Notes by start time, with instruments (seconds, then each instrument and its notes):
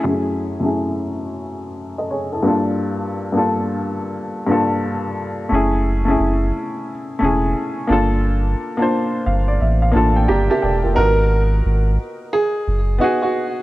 0.04 upright piano F#2 A3 C#4 E4
0.09 upright piano G#4
0.60 upright piano F#2 A3 C#4 E4
0.64 upright piano G#4
1.98 upright piano A4 D#5
2.11 upright piano G#4 C#5
2.33 upright piano E4 A4
2.43 upright piano G2 A#3 D4 F4
2.48 upright piano A4
3.32 upright piano G2 A#3 D4
3.36 upright piano F4 A4
4.46 upright piano G2 A#3 D4 F4
4.52 upright piano A4
5.49 sub bass F#1, upright piano A3 C#4 E4
5.54 upright piano G#4
6.05 upright piano A3 C#4 E4
6.10 upright piano G#4
6.20 sub bass F#1
7.19 sub bass E1, upright piano A3 C#4 E4
7.24 upright piano G#4
7.88 sub bass G1, upright piano A#3 D4 F4
7.93 upright piano A4
8.77 upright piano A#3 D4 F4
8.82 upright piano C5
9.26 sub bass G1, upright piano F5
9.48 upright piano D5
9.60 sub bass A1, upright piano E5
9.82 upright piano F5
9.92 sub bass A1, upright piano A#3 D4 F4
9.97 upright piano A4
10.16 upright piano G5
10.28 sub bass G1, upright piano G4 D5 G5 A#5
10.50 upright piano G4 A#4 E5 A5
10.62 sub bass E1, upright piano A4 D5 G5
10.84 sub bass F1, upright piano F4 A#4
10.93 upright piano B3 D#4 F#4 A#4
10.98 sub bass G#1, upright piano A#4
11.66 sub bass G#1
12.33 upright piano G#4
12.68 sub bass F#1
12.98 upright piano B3 D#4 F#4
13.04 upright piano G#4
13.22 upright piano F#4